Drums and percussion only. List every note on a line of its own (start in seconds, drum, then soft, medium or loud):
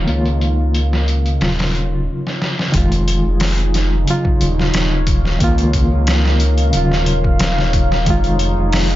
0.08 closed hi-hat medium
0.26 closed hi-hat soft
0.41 closed hi-hat medium
0.74 closed hi-hat medium
0.93 snare soft
1.08 closed hi-hat medium
1.26 closed hi-hat soft
1.41 snare medium
1.41 open hi-hat medium
1.59 snare medium
1.59 open hi-hat medium
1.75 closed hi-hat medium
2.27 snare soft
2.42 snare medium
2.59 snare medium
2.74 kick loud
2.74 closed hi-hat medium
2.92 closed hi-hat soft
3.08 closed hi-hat medium
3.40 snare loud
3.40 open hi-hat medium
3.58 closed hi-hat soft
3.74 snare soft
3.74 closed hi-hat medium
4.08 closed hi-hat medium
4.25 kick medium
4.41 closed hi-hat medium
4.59 snare soft
4.74 snare loud
4.74 closed hi-hat medium
5.07 kick medium
5.07 closed hi-hat medium
5.25 snare soft
5.40 kick loud
5.40 closed hi-hat medium
5.58 closed hi-hat soft
5.73 kick medium
5.73 closed hi-hat medium
6.07 snare loud
6.07 closed hi-hat medium
6.25 snare medium
6.40 closed hi-hat medium
6.58 closed hi-hat soft
6.73 closed hi-hat medium
6.92 snare soft
7.06 closed hi-hat medium
7.24 kick loud
7.39 snare loud
7.39 closed hi-hat medium
7.58 snare medium
7.73 kick loud
7.73 closed hi-hat medium
7.92 snare soft
8.06 kick loud
8.06 closed hi-hat medium
8.24 closed hi-hat soft
8.39 closed hi-hat medium
8.72 snare loud
8.72 open hi-hat medium
8.90 closed hi-hat soft